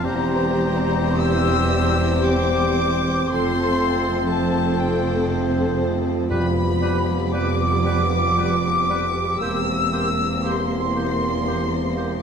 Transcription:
0.04 3.29 E1 medium
0.04 3.29 E2 medium
0.04 3.12 E3 medium
0.04 3.12 G3 medium
0.04 6.14 C4 medium
0.04 1.17 C4 medium
0.04 6.27 C4 medium
0.04 1.17 G4 medium
0.04 3.02 G4 medium
0.04 3.26 G4 medium
0.04 1.17 C5 medium
0.04 6.13 C5 medium
0.04 1.17 A#5 medium
0.04 1.20 A#5 medium
1.20 3.25 C4 medium
1.20 3.25 G4 medium
1.20 3.25 C5 medium
1.20 2.25 E6 medium
1.20 1.98 E6 loud
2.24 3.29 D6 medium
2.24 3.27 D6 medium
3.29 6.27 F1 medium
3.29 6.27 F2 medium
3.29 9.37 F3 medium
3.29 6.26 A3 medium
3.29 4.27 C4 medium
3.29 9.22 F4 medium
3.29 4.26 A4 medium
3.29 6.26 A4 medium
3.29 4.27 C5 medium
3.29 4.27 C6 medium
3.29 4.29 C6 loud
4.28 6.27 C4 medium
4.28 6.27 A4 medium
4.28 6.28 C5 medium
4.28 4.77 A5 medium
4.28 4.79 A5 medium
4.79 5.29 G5 medium
6.29 9.37 F1 medium
6.29 7.81 F2 medium
6.29 9.37 F2 medium
6.29 9.37 G3 medium
6.29 9.41 G3 medium
6.29 6.47 G3 medium
6.29 9.22 B3 medium
6.29 12.22 G4 medium
6.29 6.46 G4 medium
6.29 6.46 B4 medium
6.29 9.37 B4 medium
6.29 7.29 B5 medium
6.29 7.29 B5 loud
6.81 6.98 G3 soft
6.81 6.97 G4 medium
6.81 6.98 B4 medium
7.32 7.48 G3 medium
7.32 7.48 G4 medium
7.32 7.50 B4 medium
7.32 9.41 D6 loud
7.32 9.38 D6 medium
7.84 8.02 G3 medium
7.84 8.00 G4 soft
7.84 8.02 B4 soft
8.37 8.53 G3 medium
8.37 8.53 G4 soft
8.37 8.55 B4 medium
8.89 9.06 G3 soft
8.89 9.05 G4 soft
8.89 9.07 B4 soft
9.38 12.22 E1 medium
9.38 12.22 E2 medium
9.38 12.22 E3 medium
9.38 12.22 A#3 medium
9.38 9.57 A#3 soft
9.38 12.22 A#3 medium
9.38 12.22 C4 medium
9.38 12.22 G4 soft
9.38 9.57 G4 medium
9.38 12.22 C5 medium
9.38 10.41 E6 medium
9.38 10.42 E6 medium
9.42 9.58 C5 medium
9.92 10.08 A#3 soft
9.92 10.08 G4 soft
9.92 10.09 C5 soft
10.43 10.61 A#3 soft
10.43 10.59 G4 soft
10.43 10.62 C5 soft
10.43 11.90 C6 medium
10.43 12.21 C6 medium
10.95 11.11 A#3 soft
10.95 11.11 G4 soft
10.95 11.13 C5 soft
11.45 11.61 A#3 soft
11.45 11.62 G4 soft
11.45 11.64 C5 soft
11.95 12.11 A#3 soft
11.95 12.13 G4 soft
11.95 12.14 C5 soft

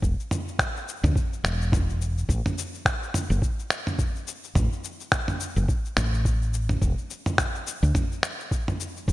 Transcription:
0.02 0.14 E1 medium
0.02 kick loud
0.02 shaker soft
0.20 shaker soft
0.31 mid tom medium
0.31 shaker medium
0.48 shaker soft
0.59 finger snap medium
0.59 kick medium
0.59 shaker soft
0.76 shaker soft
0.88 shaker medium
1.03 1.12 D2 medium
1.03 mid tom medium
1.03 shaker soft
1.16 kick loud
1.16 shaker soft
1.33 shaker soft
1.44 2.23 E1 medium
1.44 finger snap medium
1.44 shaker medium
1.62 shaker soft
1.72 kick loud
1.72 mid tom medium
1.72 shaker soft
1.90 shaker soft
2.01 shaker medium
2.18 shaker soft
2.29 2.40 A1 medium
2.29 kick loud
2.29 shaker soft
2.46 mid tom medium
2.46 shaker soft
2.58 shaker medium
2.74 shaker soft
2.85 finger snap medium
2.85 kick medium
2.85 shaker soft
3.03 shaker soft
3.14 mid tom medium
3.14 shaker medium
3.30 3.38 F#1 loud
3.30 shaker soft
3.42 kick loud
3.42 shaker soft
3.59 shaker soft
3.70 finger snap medium
3.70 shaker medium
3.87 mid tom medium
3.87 shaker soft
3.99 kick loud
3.99 shaker soft
4.16 shaker soft
4.27 shaker medium
4.44 shaker soft
4.55 4.67 A1 medium
4.55 kick loud
4.55 mid tom medium
4.55 shaker soft
4.72 shaker soft
4.84 shaker medium
5.00 shaker soft
5.12 finger snap medium
5.12 kick medium
5.12 shaker soft
5.28 mid tom medium
5.28 shaker soft
5.40 shaker medium
5.56 5.65 F#1 medium
5.56 shaker soft
5.68 kick loud
5.68 shaker soft
5.85 shaker soft
5.97 6.76 A1 medium
5.97 finger snap medium
5.97 mid tom medium
5.97 shaker medium
6.14 shaker soft
6.25 kick loud
6.25 shaker soft
6.42 shaker soft
6.54 shaker medium
6.69 mid tom medium
6.69 shaker soft
6.82 6.93 E1 medium
6.82 kick loud
6.82 shaker soft
6.98 shaker soft
7.10 shaker medium
7.26 mid tom medium
7.26 shaker soft
7.38 finger snap medium
7.38 kick medium
7.38 shaker soft
7.55 shaker soft
7.67 shaker medium
7.83 7.91 D2 medium
7.83 shaker soft
7.95 kick loud
7.95 mid tom medium
7.95 shaker soft
8.12 shaker soft
8.23 finger snap medium
8.23 shaker medium
8.40 shaker soft
8.51 kick medium
8.51 shaker soft
8.68 mid tom medium
8.68 shaker soft
8.80 shaker medium
8.97 shaker soft
9.08 9.12 E1 medium
9.08 kick loud
9.08 shaker soft

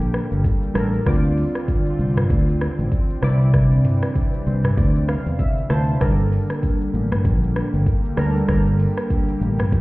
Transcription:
0.00 0.19 A#1 loud
0.00 1.02 D3 medium
0.00 0.74 G3 medium
0.00 3.19 G3 medium
0.00 1.02 A#3 medium
0.00 0.75 D4 medium
0.00 1.02 G4 loud
0.00 0.76 A4 medium
0.00 0.77 A#4 loud
0.00 shaker medium
0.14 cross-stick loud
0.32 0.41 G1 medium
0.32 shaker medium
0.44 kick loud
0.44 shaker medium
0.63 shaker medium
0.74 0.98 A1 loud
0.74 0.97 G3 medium
0.74 0.97 D4 medium
0.74 0.98 A4 medium
0.74 0.98 A#4 loud
0.74 cross-stick loud
0.74 shaker medium
0.93 shaker medium
1.05 1.43 D2 loud
1.05 1.89 D3 medium
1.05 3.21 D3 medium
1.05 1.89 C4 medium
1.05 5.97 C4 medium
1.05 3.21 F4 loud
1.05 1.90 F4 medium
1.05 1.90 D5 medium
1.05 kick loud
1.05 cross-stick loud
1.05 shaker medium
1.25 shaker medium
1.37 open hi-hat medium
1.37 shaker medium
1.55 cross-stick medium
1.55 shaker medium
1.68 kick medium
1.68 shaker medium
1.86 shaker medium
1.99 2.22 C2 medium
1.99 shaker medium
2.17 cross-stick loud
2.17 mid tom loud
2.17 shaker medium
2.30 2.66 D2 loud
2.30 kick loud
2.30 shaker medium
2.48 shaker medium
2.61 cross-stick loud
2.79 2.89 A1 medium
2.79 shaker soft
2.92 kick loud
2.92 shaker medium
3.10 shaker medium
3.22 3.82 C2 loud
3.22 4.22 C3 medium
3.22 9.81 D3 medium
3.22 5.98 E3 loud
3.22 5.98 G3 medium
3.22 4.23 C4 medium
3.22 4.23 E4 medium
3.22 4.23 D5 loud
3.22 cross-stick loud
3.22 shaker medium
3.41 shaker medium
3.54 kick loud
3.54 cross-stick medium
3.54 shaker medium
3.72 shaker medium
3.85 mid tom medium
3.85 open hi-hat medium
3.85 shaker medium
4.03 cross-stick loud
4.03 shaker medium
4.15 kick medium
4.15 shaker medium
4.33 shaker medium
4.47 4.69 C2 medium
4.47 4.75 C5 medium
4.47 shaker medium
4.64 cross-stick loud
4.64 mid tom loud
4.64 shaker medium
4.77 5.14 D2 loud
4.77 5.06 D5 medium
4.77 kick loud
4.77 shaker medium
4.96 shaker medium
5.08 5.37 F5 medium
5.08 cross-stick loud
5.08 shaker medium
5.26 5.36 E2 medium
5.26 shaker medium
5.39 5.68 E5 medium
5.39 kick medium
5.39 shaker medium
5.57 shaker medium
5.69 5.93 D2 loud
5.69 5.92 C3 medium
5.69 5.92 C4 medium
5.69 5.92 E4 medium
5.69 5.93 C5 loud
5.69 5.99 A5 medium
5.69 cross-stick loud
5.69 shaker medium
5.88 shaker soft
6.00 6.37 G1 loud
6.00 6.84 G3 medium
6.00 9.81 G3 medium
6.00 9.81 A#3 medium
6.00 6.84 D4 medium
6.00 9.81 G4 loud
6.00 6.85 A4 medium
6.00 6.85 A#4 loud
6.00 kick loud
6.00 cross-stick loud
6.00 shaker medium
6.19 shaker medium
6.32 open hi-hat medium
6.32 shaker medium
6.50 cross-stick medium
6.50 shaker medium
6.63 kick medium
6.63 shaker medium
6.81 shaker medium
6.94 7.17 A1 medium
6.94 shaker medium
7.12 cross-stick loud
7.12 mid tom loud
7.12 shaker medium
7.25 7.61 A#1 loud
7.25 kick loud
7.25 shaker medium
7.43 shaker medium
7.56 cross-stick loud
7.74 7.83 G1 medium
7.74 shaker medium
7.86 kick loud
7.86 shaker medium
8.05 shaker medium
8.16 8.41 D2 medium
8.16 8.39 G3 medium
8.16 8.40 D4 medium
8.16 8.40 A4 medium
8.16 8.40 A#4 loud
8.16 cross-stick loud
8.16 shaker medium
8.35 shaker medium
8.47 8.85 G1 loud
8.47 9.31 G3 medium
8.47 9.32 D4 medium
8.47 9.32 A4 medium
8.47 9.32 A#4 medium
8.47 kick loud
8.47 cross-stick loud
8.47 shaker medium
8.67 shaker medium
8.79 open hi-hat medium
8.79 shaker medium
8.97 cross-stick loud
8.97 shaker medium
9.10 kick medium
9.10 shaker medium
9.28 shaker medium
9.41 9.64 A1 medium
9.41 shaker medium
9.59 cross-stick loud
9.59 mid tom loud
9.59 shaker medium
9.72 9.81 A#1 loud
9.72 kick loud
9.72 shaker medium

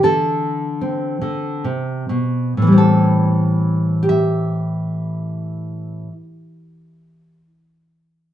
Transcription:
0.03 1.20 D3 medium
0.03 2.57 A4 medium
0.81 2.52 C4 soft
1.22 1.64 D3 medium
1.64 2.09 C3 medium
2.09 2.57 B2 medium
2.57 6.07 A2 medium
2.62 6.12 E3 soft
2.67 4.02 G3 soft
2.72 6.22 C4 soft
2.78 4.00 A4 medium
4.03 7.39 G4 medium
4.09 7.45 E5 medium

